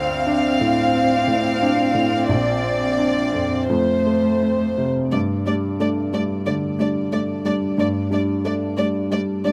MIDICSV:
0, 0, Header, 1, 5, 480
1, 0, Start_track
1, 0, Key_signature, -2, "minor"
1, 0, Tempo, 673401
1, 1630, Time_signature, 4, 2, 24, 8
1, 1630, Tempo, 700935
1, 4030, Tempo, 664452
1, 6724, End_track
2, 0, Start_track
2, 0, Title_t, "Violin section"
2, 0, Program_c, 0, 48
2, 0, Note_on_c, 0, 77, 78
2, 1600, Note_off_c, 0, 77, 0
2, 1630, Note_on_c, 0, 74, 71
2, 2590, Note_on_c, 0, 72, 64
2, 2591, Note_off_c, 0, 74, 0
2, 3404, Note_off_c, 0, 72, 0
2, 3570, Note_on_c, 0, 74, 48
2, 3625, Note_off_c, 0, 74, 0
2, 3802, Note_on_c, 0, 74, 46
2, 3857, Note_off_c, 0, 74, 0
2, 4041, Note_on_c, 0, 74, 48
2, 4099, Note_off_c, 0, 74, 0
2, 4279, Note_on_c, 0, 74, 49
2, 4337, Note_off_c, 0, 74, 0
2, 4510, Note_on_c, 0, 74, 53
2, 4568, Note_off_c, 0, 74, 0
2, 4762, Note_on_c, 0, 74, 45
2, 4820, Note_off_c, 0, 74, 0
2, 4998, Note_on_c, 0, 74, 52
2, 5056, Note_off_c, 0, 74, 0
2, 5237, Note_on_c, 0, 74, 55
2, 5295, Note_off_c, 0, 74, 0
2, 5475, Note_on_c, 0, 74, 52
2, 5533, Note_off_c, 0, 74, 0
2, 5718, Note_on_c, 0, 74, 44
2, 5776, Note_off_c, 0, 74, 0
2, 5954, Note_on_c, 0, 74, 49
2, 6012, Note_off_c, 0, 74, 0
2, 6189, Note_on_c, 0, 74, 57
2, 6247, Note_off_c, 0, 74, 0
2, 6435, Note_on_c, 0, 74, 57
2, 6493, Note_off_c, 0, 74, 0
2, 6680, Note_on_c, 0, 74, 51
2, 6724, Note_off_c, 0, 74, 0
2, 6724, End_track
3, 0, Start_track
3, 0, Title_t, "String section"
3, 0, Program_c, 1, 48
3, 0, Note_on_c, 1, 60, 81
3, 0, Note_on_c, 1, 65, 78
3, 0, Note_on_c, 1, 74, 77
3, 2568, Note_off_c, 1, 74, 0
3, 2592, Note_on_c, 1, 72, 57
3, 2594, Note_on_c, 1, 57, 60
3, 2597, Note_off_c, 1, 60, 0
3, 3562, Note_off_c, 1, 72, 0
3, 3563, Note_off_c, 1, 57, 0
3, 3564, Note_on_c, 1, 74, 51
3, 3566, Note_off_c, 1, 65, 0
3, 3567, Note_on_c, 1, 62, 50
3, 3571, Note_on_c, 1, 57, 54
3, 6724, Note_off_c, 1, 57, 0
3, 6724, Note_off_c, 1, 62, 0
3, 6724, Note_off_c, 1, 74, 0
3, 6724, End_track
4, 0, Start_track
4, 0, Title_t, "Cello"
4, 0, Program_c, 2, 42
4, 0, Note_on_c, 2, 60, 84
4, 2595, Note_on_c, 2, 57, 63
4, 2605, Note_off_c, 2, 60, 0
4, 3423, Note_off_c, 2, 57, 0
4, 3567, Note_on_c, 2, 57, 52
4, 3622, Note_off_c, 2, 57, 0
4, 3809, Note_on_c, 2, 57, 49
4, 3864, Note_off_c, 2, 57, 0
4, 4041, Note_on_c, 2, 57, 53
4, 4098, Note_off_c, 2, 57, 0
4, 4284, Note_on_c, 2, 57, 47
4, 4342, Note_off_c, 2, 57, 0
4, 4518, Note_on_c, 2, 57, 55
4, 4576, Note_off_c, 2, 57, 0
4, 4747, Note_on_c, 2, 57, 52
4, 4805, Note_off_c, 2, 57, 0
4, 4992, Note_on_c, 2, 57, 51
4, 5049, Note_off_c, 2, 57, 0
4, 5230, Note_on_c, 2, 57, 50
4, 5288, Note_off_c, 2, 57, 0
4, 5465, Note_on_c, 2, 57, 54
4, 5523, Note_off_c, 2, 57, 0
4, 5706, Note_on_c, 2, 57, 56
4, 5764, Note_off_c, 2, 57, 0
4, 5953, Note_on_c, 2, 57, 53
4, 6011, Note_off_c, 2, 57, 0
4, 6197, Note_on_c, 2, 57, 51
4, 6254, Note_off_c, 2, 57, 0
4, 6434, Note_on_c, 2, 57, 59
4, 6492, Note_off_c, 2, 57, 0
4, 6676, Note_on_c, 2, 57, 51
4, 6724, Note_off_c, 2, 57, 0
4, 6724, End_track
5, 0, Start_track
5, 0, Title_t, "Upright piano"
5, 0, Program_c, 3, 0
5, 0, Control_c, 3, 64, 127
5, 0, Note_on_c, 3, 38, 83
5, 0, Note_on_c, 3, 60, 67
5, 188, Note_on_c, 3, 62, 73
5, 333, Note_off_c, 3, 60, 0
5, 433, Note_on_c, 3, 45, 58
5, 572, Note_off_c, 3, 62, 0
5, 639, Note_off_c, 3, 38, 0
5, 677, Note_on_c, 3, 60, 66
5, 814, Note_off_c, 3, 45, 0
5, 909, Note_on_c, 3, 45, 56
5, 1055, Note_off_c, 3, 60, 0
5, 1154, Note_on_c, 3, 62, 64
5, 1291, Note_off_c, 3, 45, 0
5, 1386, Note_on_c, 3, 45, 56
5, 1537, Note_off_c, 3, 62, 0
5, 1630, Note_off_c, 3, 45, 0
5, 1630, Note_on_c, 3, 34, 70
5, 1643, Control_c, 3, 64, 0
5, 1770, Control_c, 3, 64, 127
5, 1863, Note_on_c, 3, 60, 58
5, 2110, Note_on_c, 3, 62, 58
5, 2247, Note_off_c, 3, 60, 0
5, 2347, Note_on_c, 3, 41, 49
5, 2496, Note_off_c, 3, 62, 0
5, 2564, Note_off_c, 3, 34, 0
5, 2584, Note_off_c, 3, 41, 0
5, 2594, Note_on_c, 3, 41, 64
5, 2607, Control_c, 3, 64, 0
5, 2705, Control_c, 3, 64, 127
5, 2846, Note_on_c, 3, 57, 43
5, 3093, Note_on_c, 3, 60, 49
5, 3231, Note_off_c, 3, 57, 0
5, 3336, Note_on_c, 3, 48, 48
5, 3473, Note_off_c, 3, 60, 0
5, 3535, Note_off_c, 3, 41, 0
5, 3567, Note_off_c, 3, 48, 0
5, 3575, Note_on_c, 3, 43, 56
5, 3576, Control_c, 3, 64, 0
5, 3692, Control_c, 3, 64, 127
5, 3809, Note_on_c, 3, 55, 44
5, 3812, Note_on_c, 3, 62, 48
5, 4013, Note_off_c, 3, 55, 0
5, 4015, Note_off_c, 3, 62, 0
5, 4035, Note_on_c, 3, 57, 48
5, 4039, Note_on_c, 3, 62, 45
5, 4251, Note_off_c, 3, 57, 0
5, 4253, Note_off_c, 3, 62, 0
5, 4274, Note_on_c, 3, 55, 42
5, 4276, Note_on_c, 3, 62, 50
5, 4488, Note_off_c, 3, 55, 0
5, 4489, Note_off_c, 3, 62, 0
5, 4490, Note_off_c, 3, 43, 0
5, 4517, Note_on_c, 3, 50, 47
5, 4758, Note_on_c, 3, 55, 40
5, 4760, Note_on_c, 3, 62, 45
5, 4897, Note_off_c, 3, 50, 0
5, 4970, Note_off_c, 3, 55, 0
5, 4971, Note_off_c, 3, 62, 0
5, 4992, Note_on_c, 3, 62, 48
5, 4993, Note_on_c, 3, 57, 48
5, 5207, Note_off_c, 3, 57, 0
5, 5207, Note_off_c, 3, 62, 0
5, 5229, Note_on_c, 3, 55, 46
5, 5230, Note_on_c, 3, 62, 50
5, 5444, Note_off_c, 3, 55, 0
5, 5445, Note_off_c, 3, 62, 0
5, 5466, Note_on_c, 3, 43, 62
5, 5481, Control_c, 3, 64, 0
5, 5609, Control_c, 3, 64, 127
5, 5700, Note_on_c, 3, 55, 43
5, 5705, Note_on_c, 3, 62, 51
5, 5919, Note_off_c, 3, 55, 0
5, 5921, Note_off_c, 3, 62, 0
5, 5947, Note_on_c, 3, 57, 46
5, 5949, Note_on_c, 3, 62, 50
5, 6163, Note_off_c, 3, 57, 0
5, 6164, Note_off_c, 3, 62, 0
5, 6189, Note_on_c, 3, 55, 45
5, 6191, Note_on_c, 3, 62, 49
5, 6398, Note_off_c, 3, 43, 0
5, 6405, Note_off_c, 3, 55, 0
5, 6406, Note_off_c, 3, 62, 0
5, 6425, Note_on_c, 3, 55, 49
5, 6659, Note_off_c, 3, 55, 0
5, 6670, Note_on_c, 3, 55, 44
5, 6675, Note_on_c, 3, 62, 52
5, 6724, Note_off_c, 3, 55, 0
5, 6724, Note_off_c, 3, 62, 0
5, 6724, End_track
0, 0, End_of_file